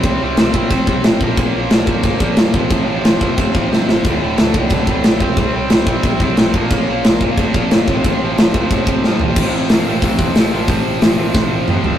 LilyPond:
<<
  \new Staff \with { instrumentName = "Distorted electric guitar" } { \clef bass \time 4/4 \key f \major \tempo 4 = 180 <c g c'>8 <c g c'>8 <c g c'>8 <c g c'>8 <c g c'>8 <c g c'>8 <c g c'>8 <bes, f bes>8 | <bes, f bes>8 <bes, f bes>8 <bes, f bes>8 <bes, f bes>8 <bes, f bes>8 <bes, f bes>8 <bes, f bes>8 <f, c f>8 | <f, c f>8 <f, c f>8 <f, c f>8 <f, c f>8 <f, c f>8 <f, c f>8 <f, c f>8 <f, c f>8 | <d, a, d>8 <d, a, d>8 <d, a, d>8 <d, a, d>8 <d, a, d>8 <d, a, d>8 <d, a, d>8 <c g c'>8 |
<c g c'>8 <c g c'>8 <c g c'>8 <c g c'>8 <c g c'>8 <c g c'>8 <c g c'>8 <bes, f bes>8 | <bes, f bes>8 <bes, f bes>8 <bes, f bes>8 <bes, f bes>8 <bes, f bes>8 <bes, f bes>8 <bes, f bes>8 <f, c f>8 | <f, c f>8 <f, c f>8 <f, c f>8 <f, c f>8 <f, c f>8 <f, c f>8 <f, c f>8 <f, c f>8 | <f, c f>4 <f, c f>8 <f, c f>8 <f, c f>4 <f, c f>8 <f, c f>8 |
<f, c f>4 <f, c f>8 <f, c f>8 <f, c f>4 <f, c f>8 <f, c f>8 | }
  \new Staff \with { instrumentName = "Picked electric bass" } { \clef bass \time 4/4 \key f \major c,8 c,8 c,8 bes,,8 bes,,8 c,8 bes,,8 bes,,8 | bes,,8 bes,,8 bes,,8 g,,8 g,,8 bes,,8 g,8 a,,8 | a,,8 a,,8 a,,8 g,,8 g,,8 a,,8 g,8 a,,8 | d,,8 d,,8 d,,8 c,8 c,8 d,,8 bes,,8 c,8 |
c,8 c,8 c,8 bes,,8 bes,,8 c,8 bes,,8 bes,,8 | bes,,8 bes,,8 bes,,8 g,,8 g,,8 bes,,8 g,,8 a,,8 | a,,8 a,,8 a,,8 g,,8 g,,8 a,,8 g,8 a,,8 | a,,8 a,,8 a,,8 a,,8 a,,8 e,8 a,,8 a,,8 |
a,,8 a,,8 a,,8 a,,8 a,,8 a,,8 a,,4 | }
  \new DrumStaff \with { instrumentName = "Drums" } \drummode { \time 4/4 <cymc bd>4 <cymc sn>8 bd8 <cymc bd>8 bd8 <cymc sn>8 bd8 | <cymc bd>4 <cymc sn>8 bd8 <cymc bd>8 bd8 <cymc sn>8 bd8 | <cymc bd>4 <cymc sn>8 bd8 <cymc bd>8 bd8 sn8 sn8 | <cymc bd>4 <cymc sn>8 bd8 <cymc bd>8 bd8 <cymc sn>8 bd8 |
<cymc bd>4 <cymc sn>8 bd8 <cymc bd>8 bd8 <cymc sn>8 bd8 | <cymc bd>4 <cymc sn>8 bd8 <cymc bd>8 bd8 <cymc sn>8 bd8 | <cymc bd>4 <cymc sn>8 bd8 <cymc bd>8 bd8 sn8 tomfh8 | <cymc bd>4 <hho sn>4 <hho bd>8 bd8 <hho sn>4 |
<hho bd>4 <hho sn>4 <bd sn>4 toml8 tomfh8 | }
>>